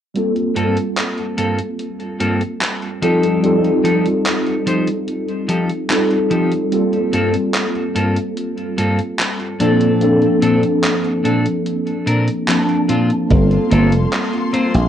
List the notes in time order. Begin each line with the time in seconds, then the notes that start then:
0.14 G3 A#3 C4 F4 A4, closed hi-hat
0.36 closed hi-hat
0.55 G2 A#3 C4 F4 A4, closed hi-hat
0.77 closed hi-hat
0.97 clap, closed hi-hat
1.18 closed hi-hat
1.37 G2 A#3 C4 F4 A4, closed hi-hat
1.59 closed hi-hat
1.79 closed hi-hat
2.00 closed hi-hat
2.20 G2 A#3 C4 F4 A4, closed hi-hat
2.41 closed hi-hat
2.61 clap, closed hi-hat
2.82 closed hi-hat
3.02 F3 G3 C4 D#4 F4 G4 A4, closed hi-hat
3.23 closed hi-hat
3.42 G3 C4 D#4 F4 A4, closed hi-hat
3.64 closed hi-hat
3.84 F3 D#4 G4 A4, closed hi-hat
4.05 closed hi-hat
4.26 clap, closed hi-hat
4.47 closed hi-hat
4.66 F3 D#4 G4 C5, closed hi-hat
4.87 closed hi-hat
5.08 closed hi-hat
5.28 closed hi-hat
5.48 F3 D#4 G4 A4, closed hi-hat
5.70 closed hi-hat
5.89 G3 C4 D#4 F4 A4, clap, closed hi-hat
6.11 closed hi-hat
6.30 F3 D#4 G4 A4, closed hi-hat
6.52 closed hi-hat
6.71 G3 A#3 C4 F4 A4, closed hi-hat
6.93 closed hi-hat
7.13 G2 A#3 C4 F4 A4, closed hi-hat
7.34 closed hi-hat
7.54 clap, closed hi-hat
7.75 closed hi-hat
7.95 G2 A#3 C4 F4 A4, closed hi-hat
8.16 closed hi-hat
8.37 closed hi-hat
8.58 closed hi-hat
8.78 G2 A#3 C4 F4 A4, closed hi-hat
8.99 closed hi-hat
9.19 clap, closed hi-hat
9.40 closed hi-hat
9.60 A#2 F3 A#3 C4 D4 A4, closed hi-hat
9.81 closed hi-hat
10.00 F3 A#3 C4 D4 A4, closed hi-hat
10.22 closed hi-hat
10.42 A#2 C4 D4 A4, closed hi-hat
10.63 closed hi-hat
10.84 clap, closed hi-hat
11.04 closed hi-hat
11.24 A#2 C4 D4 A4, closed hi-hat
11.46 closed hi-hat
11.66 closed hi-hat
11.87 closed hi-hat
12.06 A#2 C4 D4 A#4, closed hi-hat
12.28 closed hi-hat
12.48 F3 A#3 C4 D4 A5, clap, closed hi-hat
12.69 closed hi-hat
12.89 A#2 C4 D4 F4, closed hi-hat
13.10 closed hi-hat
13.29 G1 G3 A#3 C4 F4 A4 F5 A5 C6, kick, closed hi-hat
13.51 closed hi-hat
13.71 G1 A#3 C4 F4 A4, closed hi-hat
13.92 F1, closed hi-hat
14.13 clap, closed hi-hat
14.33 closed hi-hat
14.53 A#3 C4 F4 C5, closed hi-hat
14.74 A#1, closed hi-hat